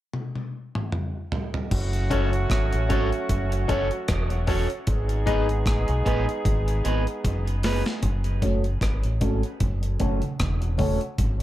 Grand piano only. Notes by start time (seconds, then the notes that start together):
2.10 C#4 F#4 A4 C#5
2.89 C#4 F#4 A4 C#5
3.68 C#4 F#4 A4 C#5
4.47 C#4 F#4 A4 C#5
5.26 D#4 G#4 B4 D#5
8.42 C#4 F#4 A4 C#5
9.21 C#4 F#4 A4 C#5
10.00 C#4 F#4 A4 C#5
10.78 C#4 F#4 A4 C#5